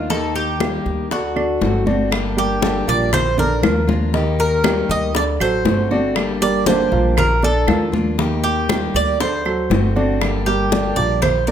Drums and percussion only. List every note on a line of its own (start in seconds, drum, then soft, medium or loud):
0.10 high bongo medium
0.10 high conga soft
0.35 high bongo soft
0.35 high conga soft
0.60 high bongo medium
0.60 high conga medium
0.60 claves medium
0.86 high bongo soft
0.86 high conga soft
1.11 high bongo medium
1.11 high conga soft
1.36 high bongo soft
1.36 high conga soft
1.36 claves medium
1.61 high bongo soft
1.61 low bongo medium
1.61 high conga medium
1.87 high conga medium
2.12 high bongo medium
2.12 high conga soft
2.12 claves medium
2.38 high conga soft
2.62 high bongo medium
2.62 high conga medium
2.88 high bongo soft
2.88 high conga soft
3.13 high bongo medium
3.13 high conga soft
3.13 low conga medium
3.13 claves medium
3.38 high bongo soft
3.38 high conga soft
3.38 low conga medium
3.63 high bongo soft
3.63 low bongo medium
3.63 high conga medium
3.63 claves medium
3.89 high bongo soft
3.89 high conga medium
4.14 high bongo medium
4.14 high conga soft
4.39 high conga soft
4.64 high bongo medium
4.64 high conga loud
4.64 claves medium
4.89 high bongo soft
4.89 high conga soft
5.15 high bongo medium
5.15 high conga soft
5.40 high bongo soft
5.40 high conga soft
5.40 claves medium
5.65 high bongo soft
5.65 low bongo medium
5.65 high conga medium
5.91 high bongo soft
5.91 high conga soft
6.16 high bongo medium
6.16 high conga soft
6.16 claves medium
6.41 high conga soft
6.66 high bongo medium
6.66 high conga loud
6.92 high bongo soft
6.92 high conga soft
7.17 high bongo medium
7.17 high conga soft
7.17 low conga medium
7.17 claves medium
7.43 high bongo soft
7.43 high conga soft
7.68 high bongo soft
7.68 low bongo medium
7.68 high conga medium
7.68 claves medium
7.93 high bongo soft
7.93 high conga medium
8.19 high bongo medium
8.19 high conga soft
8.44 high conga soft
8.69 high bongo medium
8.69 high conga loud
8.69 claves medium
8.95 high bongo soft
8.95 high conga soft
9.20 high bongo medium
9.20 high conga soft
9.45 high bongo soft
9.45 high conga soft
9.45 claves medium
9.71 high bongo soft
9.71 low bongo medium
9.71 high conga medium
9.96 high bongo soft
9.96 high conga soft
10.21 high bongo medium
10.21 high conga soft
10.21 claves medium
10.48 high conga soft
10.72 high bongo medium
10.72 high conga medium
10.98 high bongo soft
10.98 high conga soft
11.22 high bongo medium
11.22 high conga soft
11.22 low conga medium
11.22 claves medium
11.48 high bongo soft
11.48 high conga soft